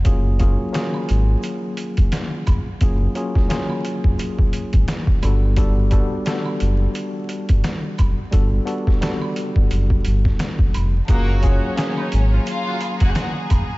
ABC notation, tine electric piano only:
X:1
M:4/4
L:1/16
Q:"Swing 16ths" 1/4=87
K:F#
V:1 name="Tine electric piano"
[F,A,CEG]2 [F,A,CEG]2 [F,A,CEG]8- [F,A,CEG]3 z | [F,A,CEG]2 [F,A,CEG]2 [F,A,CEG]8- [F,A,CEG]2 [=G,B,=DF=A]2 | [=G,B,=DF=A]2 [G,B,DFA]2 [G,B,DFA]8- [G,B,DFA]3 z | [=G,B,=DF=A]2 [G,B,DFA]2 [G,B,DFA]8- [G,B,DFA]3 z |
[F,A,CEG]2 [F,A,CEG]2 [F,A,CG]8- [F,A,CG]3 z |]